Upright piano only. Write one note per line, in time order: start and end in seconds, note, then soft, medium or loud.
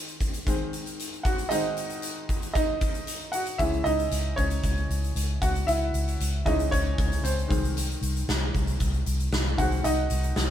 0.00 0.45 D#3 soft
0.00 0.46 G#3 soft
0.00 0.46 C4 soft
0.47 0.70 D#3 soft
0.47 0.70 G#3 soft
0.47 0.71 C4 soft
1.23 1.50 F#4 medium
1.23 1.48 F#5 medium
1.49 1.85 D#3 soft
1.49 1.85 G#3 soft
1.49 1.85 C4 medium
1.49 2.51 D#4 medium
1.49 2.52 D#5 medium
2.54 3.30 D#4 medium
2.54 3.28 D#5 medium
3.32 3.58 F#4 medium
3.32 3.59 F#5 medium
3.58 3.94 E3 soft
3.58 3.94 G#3 soft
3.58 3.94 C#4 medium
3.58 3.84 E4 medium
3.58 3.86 E5 medium
3.84 4.34 D#4 medium
3.84 4.38 D#5 medium
4.36 5.38 C#4 medium
4.36 5.44 C#5 medium
5.42 5.66 F#4 medium
5.42 5.68 F#5 medium
5.67 6.42 E4 medium
5.67 6.48 E5 medium
6.45 6.80 E3 soft
6.45 6.80 G#3 soft
6.45 6.71 C#4 medium
6.45 6.70 D#4 medium
6.45 6.73 D#5 medium
6.71 7.21 C#4 medium
6.71 7.20 C#5 medium
7.24 7.48 C4 soft
7.24 7.60 C5 medium
7.48 8.23 D#3 soft
7.48 8.23 G#3 soft
7.48 8.24 C4 soft
9.57 9.92 D#3 soft
9.57 9.93 G#3 soft
9.57 9.93 C4 medium
9.57 9.83 F#4 medium
9.57 9.85 F#5 medium
9.84 10.50 D#4 medium
9.84 10.50 D#5 medium